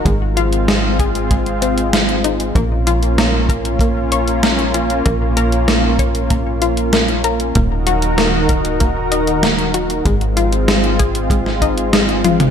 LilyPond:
<<
  \new Staff \with { instrumentName = "Synth arpeggio sound" } { \time 4/4 \key bes \minor \tempo 4 = 96 aes8 f'16 r16 aes8 aes'8 aes8 c'16 r16 f'16 r16 ees'8 | bes8 f'16 r16 bes8 bes'8 bes8 des''8 bes8 f'8 | bes8 bes'16 r16 bes8 des''8 bes8 f'8 bes8 bes'8 | bes8 ges'16 r16 bes8 bes'8 bes8 ees''8 bes8 ges'8 |
aes8 f'16 r16 aes8 aes'8 aes8 ees'8 aes8 f'8 | }
  \new Staff \with { instrumentName = "Analog synth pad" } { \time 4/4 \key bes \minor <aes c' f'>1 | <bes des' f'>1~ | <bes des' f'>1 | <ees ees' ges' bes'>1 |
<aes c' f'>1 | }
  \new Staff \with { instrumentName = "Analog synth bass" } { \clef bass \time 4/4 \key bes \minor aes,,1 | bes,,1 | bes,,1 | ees,,1 |
aes,,1 | }
  \new DrumStaff \with { instrumentName = "Drums" } \drummode { \time 4/4 <hh bd>8 hh16 hh16 <hh sn>8 <hh bd>16 hh16 <hh bd>16 hh16 hh16 hh16 <hh sn>16 hh16 hh16 hh16 | <hh bd>8 hh16 hh16 <hh sn>8 <hh bd>16 hh16 <hh bd>8 hh16 hh16 <hh sn>16 hh16 hh16 hh16 | <hh bd>8 hh16 hh16 <hh sn>8 <hh bd>16 hh16 <hh bd>8 hh16 hh16 <hh sn>16 hh16 hh16 hh16 | <hh bd>8 hh16 hh16 <hh sn>8 <hh bd>16 hh16 <hh bd>8 hh16 hh16 <hh sn>16 hh16 hh16 hh16 |
<hh bd>16 hh16 hh16 hh16 <hh sn>16 hh16 <hh bd>16 hh16 <hh bd>16 sn16 <hh bd>16 hh16 <hh sn>16 hh16 <hh tommh>16 <hh toml>16 | }
>>